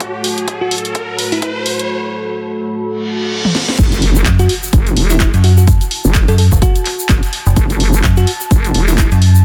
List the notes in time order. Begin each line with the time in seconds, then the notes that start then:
Already playing: A3 F#4 A4 C#5 A5, riser
0.00 kick, closed hi-hat
0.24 open hi-hat
0.38 closed hi-hat
0.48 kick, closed hi-hat
0.61 F#4
0.71 open hi-hat
0.78 closed hi-hat
0.85 closed hi-hat
0.95 kick, closed hi-hat
1.19 open hi-hat
1.32 E4, open hi-hat
1.42 E4, kick, closed hi-hat
1.66 open hi-hat
1.79 closed hi-hat
2.84 reverse cymbal
3.45 high tom
3.55 snare
3.69 snare
3.78 F#1, kick, closed hi-hat, crash, impact, shaker
3.92 closed hi-hat, shaker
4.01 A5, open hi-hat
4.15 shaker
4.26 F#2, kick, clap, closed hi-hat, shaker
4.39 F#4, closed hi-hat, shaker
4.49 open hi-hat
4.63 shaker
4.73 F#1, kick, closed hi-hat, shaker
4.87 closed hi-hat, shaker
4.97 E1, open hi-hat
5.10 E4, open hi-hat, shaker
5.20 kick, clap, closed hi-hat, shaker
5.34 F#2, closed hi-hat, shaker
5.44 F#4, open hi-hat
5.57 F#4, shaker
5.67 kick, closed hi-hat, shaker
5.81 closed hi-hat, shaker
5.91 open hi-hat
6.04 F#1, shaker
6.14 kick, clap, closed hi-hat, shaker
6.28 F#2 A4, closed hi-hat, shaker
6.38 A4, open hi-hat
6.52 E1, kick, shaker
6.62 F#4, kick, closed hi-hat, shaker
6.76 closed hi-hat, shaker
6.86 clap, open hi-hat
6.99 shaker
7.09 F#1, kick, clap, closed hi-hat, shaker
7.23 closed hi-hat, shaker
7.33 open hi-hat
7.46 F#1, shaker
7.56 F#1, kick, closed hi-hat, shaker
7.70 closed hi-hat, shaker
7.80 open hi-hat
7.93 shaker
8.04 F#2, kick, clap, closed hi-hat, shaker
8.17 F#4, closed hi-hat, shaker
8.27 open hi-hat
8.41 shaker
8.51 F#1, kick, closed hi-hat, shaker
8.64 closed hi-hat, shaker
8.74 E1, open hi-hat
8.88 E4, open hi-hat, shaker
8.98 E4, kick, clap, closed hi-hat, shaker
9.12 F#2, closed hi-hat, shaker
9.22 open hi-hat
9.35 shaker